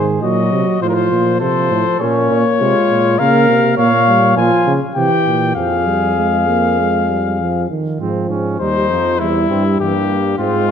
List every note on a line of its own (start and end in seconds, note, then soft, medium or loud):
0.00 0.24 G#2 medium
0.00 0.22 D#3 medium
0.00 0.23 G#4 medium
0.22 0.52 A#2 medium
0.22 0.81 F#3 medium
0.22 0.81 F#4 medium
0.22 0.81 D#5 medium
0.52 0.66 C3 medium
0.81 1.11 A2 medium
0.81 1.40 F3 medium
0.81 1.39 F4 medium
0.81 0.91 C5 medium
0.89 0.96 A#4 medium
0.94 1.40 C5 medium
1.12 1.43 A#2 medium
1.40 1.71 C3 medium
1.40 2.00 F3 medium
1.40 2.03 A4 medium
1.40 1.99 C5 medium
1.71 1.85 A2 medium
2.00 2.30 A#2 medium
2.00 2.62 A#3 medium
2.00 2.42 C#4 medium
2.00 3.20 C#5 medium
2.31 2.44 A#2 medium
2.59 2.74 C3 medium
2.59 3.19 G#3 medium
2.59 3.17 F4 medium
2.90 3.19 A#2 medium
3.18 3.48 C#3 medium
3.18 3.77 A#3 medium
3.18 3.76 A#4 medium
3.18 3.77 F5 medium
3.49 3.78 C3 medium
3.77 4.36 A#2 medium
3.77 3.92 A#3 medium
3.77 4.35 C#5 medium
3.77 4.35 F5 medium
4.08 4.39 G3 medium
4.37 4.50 A#2 medium
4.37 4.76 F3 medium
4.37 4.74 F4 medium
4.37 4.74 G#5 medium
4.66 4.80 C#3 medium
4.95 5.10 C3 medium
4.95 5.53 E3 medium
4.95 5.51 G4 medium
4.95 5.51 G5 medium
5.26 5.55 A#2 medium
5.56 7.65 F2 medium
5.56 5.89 F3 medium
5.56 7.66 G#4 medium
5.56 7.65 F5 medium
5.87 6.17 G3 medium
6.18 6.47 G#3 medium
6.48 6.81 A#3 medium
6.80 7.11 G#3 medium
7.10 7.40 G3 medium
7.41 7.69 F3 medium
7.70 7.99 D#3 medium
8.00 8.28 G#2 medium
8.00 8.56 F3 medium
8.00 8.28 C4 medium
8.30 8.59 G#2 medium
8.30 8.59 C#4 medium
8.59 8.91 D#2 medium
8.59 8.90 G3 medium
8.59 9.21 D#4 medium
8.59 9.21 C5 medium
8.90 9.21 F2 medium
8.90 9.20 F3 medium
9.20 9.49 E2 medium
9.20 9.78 G3 medium
9.20 9.49 E4 medium
9.20 9.79 E4 medium
9.50 9.79 G2 medium
9.50 9.63 C4 medium
9.79 10.37 G2 medium
9.79 9.94 E3 medium
9.79 10.37 A#3 medium
9.79 10.37 G4 medium
10.11 10.38 G3 medium
10.38 10.71 G#2 medium
10.38 10.71 G#3 medium
10.38 10.67 C4 medium
10.38 10.71 F4 medium
10.67 10.71 C#4 medium